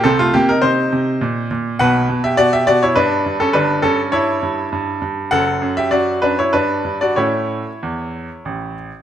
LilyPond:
<<
  \new Staff \with { instrumentName = "Grand piano" } { \time 3/4 \key bes \lydian \tempo 4 = 102 <c' a'>16 <a f'>16 <bes g'>16 <ees' bes'>16 <ees' c''>4. r8 | \key a \mixolydian <b' fis''>8. <g' e''>16 <fis' d''>16 <g' e''>16 <fis' d''>16 <e' cis''>16 <d' b'>8. <cis' a'>16 | <d' b'>8 <cis' a'>8 <e' cis''>4. r8 | <a' fis''>8. <g' e''>16 <fis' d''>8 <d' b'>16 <e' cis''>16 <d' b'>8. <fis' d''>16 |
<e' cis''>2~ <e' cis''>8 r8 | }
  \new Staff \with { instrumentName = "Grand piano" } { \clef bass \time 3/4 \key bes \lydian <c, c>8 c8 c8 c8 bes,8 bes,8 | \key a \mixolydian <b,, b,>8 b,8 b,8 b,8 g,8 g,8 | <g,, g,>8 g,8 g,8 g,8 g,8 g,8 | <fis,, fis,>8 fis,8 fis,8 fis,8 g,8 g,8 |
<a, a cis'>4 e,4 a,,4 | }
>>